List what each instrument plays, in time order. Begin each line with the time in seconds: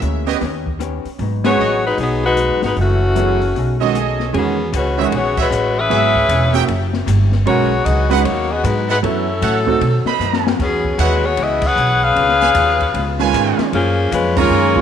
0.01 upright bass D2, hollow-body jazz guitar A#2 E3 G#3 C#4, closed hi-hat
0.27 grand piano B3 C#4 G4 B4, trumpet section G4 B4 C#5 D#5, open hi-hat
0.41 upright bass D#2, hollow-body jazz guitar D#3 B3 C#4 G4, kick, snare, open hi-hat
0.66 kick
0.79 hollow-body jazz guitar D#3 B3 C#4 G4, cross-stick, closed hi-hat
1.05 muted upright bass stroke, open hi-hat
1.19 upright bass G#1, hollow-body jazz guitar G#2 F#3 B3 D#4, kick, open hi-hat
1.44 grand piano G#3 C#4 F#4 B4, saxophone section B3 F#4 G#4 C#5, snare, ride
1.57 upright bass A1, hollow-body jazz guitar G#2 F#3 B3 D#4, trumpet section F#4 G#4 B4 D#5
1.86 saxophone section G#3 D#4 F#4 B4
1.97 upright bass B1, hollow-body jazz guitar G#2 F#3 B3 D#4, saxophone section B3 D#4 G#4, kick, open hi-hat
2.01 saxophone section F#3
2.26 saxophone section G#3 D#4 F#4 B4
2.36 hollow-body jazz guitar G#2 F#3 B3 D#4, cross-stick, closed hi-hat
2.49 upright bass D#2
2.62 upright bass G#1, saxophone section G#3 D#4 F#4 B4, snare, open hi-hat
2.75 upright bass F#1, hollow-body jazz guitar F#2 E3 A3 C#4, kick, open hi-hat
2.81 saxophone section E3 A3 C#4 F#4
3.15 hollow-body jazz guitar F#2 E3 A3 C#4, grand piano F#3 B3 E4 G#4, closed hi-hat
3.42 open hi-hat
3.55 upright bass B1, hollow-body jazz guitar B2 A3 D#4 G#4, kick, open hi-hat
3.80 grand piano D#3 G#3 C#4 F#4, trumpet section G#4 A4 C#5 D#5
3.95 hollow-body jazz guitar B2 A3 D#4 G#4, cross-stick, closed hi-hat
4.20 snare
4.33 upright bass E2, grand piano D#3 G#3 C#4 F#4, hollow-body jazz guitar E3 G#3 C#4 F#4, saxophone section F#3 B3 C#4 G#4, kick, ride
4.72 upright bass C#2, hollow-body jazz guitar E3 G#3 C#4 F#4, saxophone section G#3 F#4, kick, hi-hat pedal, ride
4.77 saxophone section C#4 B4
4.97 grand piano D#3 G#3 C#4 D#4, saxophone section B3 G#4, trumpet section F#4 G#4 C#5 E5
5.02 saxophone section F#4 C#5
5.11 upright bass A#1, hollow-body jazz guitar E3 G#3 C#4 F#4, saxophone section F#4, kick, ride
5.15 saxophone section B3 G#4 C#5
5.36 trumpet section F#4 G#4 C#5 E5, kick, crash
5.41 saxophone section G#3 C#4 F#4 B4
5.50 upright bass A1, hollow-body jazz guitar E3 G#3 C#4 F#4, hi-hat pedal
5.79 saxophone section C#4 G#4 B4 E5
5.90 upright bass G#1, hollow-body jazz guitar C#3 B3 E4 G#4, grand piano F#3 B3 E4 G#4, trumpet section G#4 B4 C#5 E5, kick, ride
6.15 kick
6.29 upright bass E1, hollow-body jazz guitar C#3 B3 E4 G#4, kick, hi-hat pedal, ride
6.53 grand piano A#3 C#4 E4 F#4, trumpet section G4 A#4 E5 G5
6.68 upright bass F#1, hollow-body jazz guitar F#3 A#3 E4 G4, kick, ride
6.93 snare
7.06 upright bass G1, hollow-body jazz guitar F#3 A#3 E4 G4, kick, hi-hat pedal, ride
7.32 snare
7.45 upright bass B1, hollow-body jazz guitar B2 F#3 G#3 D#4, grand piano G#3 C#4 F#4 A#4, saxophone section B3 F#4 G#4 C#5, kick, ride
7.85 upright bass C#2, hollow-body jazz guitar B2 F#3 G#3 D#4, saxophone section B3 F#4 G#4 D#5, kick, hi-hat pedal, ride
8.10 grand piano G#3 C#4 F#4 B4, saxophone section G#3 D#4 F#4 B4, trumpet section G#4 B4 D#5 F#5, ride
8.24 upright bass D#2, hollow-body jazz guitar B2 F#3 G#3 D#4, saxophone section A#3 D#4 F#4 C#5, kick, ride
8.51 saxophone section B3 F#4 G#4 D#5
8.63 upright bass G#2, hollow-body jazz guitar B2 F#3 G#3 D#4, saxophone section G#3 D#4 F#4 B4, kick, hi-hat pedal, ride
8.88 saxophone section G#3 D#4 F#4 B4, trumpet section A4 C#5 E5 F#5
9.01 hollow-body jazz guitar F#2 E3 A3 C#4, upright bass F#2, grand piano F#3 B3 E4 A4, saxophone section F#3 C#4 E4 A4, kick, ride
9.41 hollow-body jazz guitar F#2 E3 A3 C#4, upright bass A2, trumpet section A4 C#5 E5 F#5, kick, hi-hat pedal, ride
9.67 grand piano A3 C4 D#4 F#4, kick
9.80 hollow-body jazz guitar B2 D#3 A3 C4, upright bass B2, kick, ride
10.05 trumpet section B4 C5 D#5 B5, muted upright bass stroke, snare
10.19 upright bass F#2, hollow-body jazz guitar B2 D#3 A3 C4, hi-hat pedal
10.33 snare
10.47 snare
10.58 upright bass E2, hollow-body jazz guitar E3 G#3 C#4 F#4, saxophone section C#4 G#4, kick, snare, crash
10.62 saxophone section F#3 B3
10.84 kick
10.98 upright bass D#2, hollow-body jazz guitar E3 G#3 C#4 F#4, saxophone section G#3 C#4 F#4 B4, trumpet section G#4 C#5 E5 F#5, kick, hi-hat pedal, ride
11.25 saxophone section B3 F#4 G#4 C#5
11.37 upright bass C#2, hollow-body jazz guitar E3 G#3 C#4 F#4, saxophone section G#4 D#5, kick, ride
11.41 saxophone section B3 E4
11.62 saxophone section C#4, kick, crash
11.66 saxophone section G#4 B4 F#5
11.76 upright bass B1, hollow-body jazz guitar E3 G#3 C#4 F#4, hi-hat pedal
12.03 saxophone section C#4 G#4 B4 F5
12.16 upright bass C#2, hollow-body jazz guitar C#3 G#3 B3, kick, ride
12.20 hollow-body jazz guitar F4
12.29 snare
12.41 trumpet section B4 C#5 F5 G#5, snare
12.54 upright bass D#2, hollow-body jazz guitar C#3 G#3 B3 F4, kick, hi-hat pedal, ride
12.80 kick, ride
12.94 upright bass C#2, hollow-body jazz guitar C#3 G#3 B3 F4, kick, ride
13.19 grand piano D#3 G#3 C#4 F4, trumpet section B4 C#5 F5 G#5, snare
13.33 upright bass G#2, hollow-body jazz guitar C#3 G#3 B3 F4, kick, hi-hat pedal, ride
13.58 muted upright bass stroke, snare, ride
13.72 upright bass F#2, saxophone section F3 A#3 C#4 G#4, hollow-body jazz guitar F#3 A#3 F4 G#4, kick, ride
14.11 upright bass F2, hollow-body jazz guitar F#3 A#3 F4 G#4, saxophone section G#3 C#4 F4 B4, kick, hi-hat pedal, ride
14.36 grand piano D#3 G#3 C#4 F4, saxophone section A#3 F4 G#4 C#5, trumpet section A#4 F5 G#5 A#5, kick, crash
14.50 upright bass F#2, hollow-body jazz guitar F#3 A#3
14.54 hollow-body jazz guitar F4 G#4
14.76 grand piano D#3 G#3 C#4 F4, kick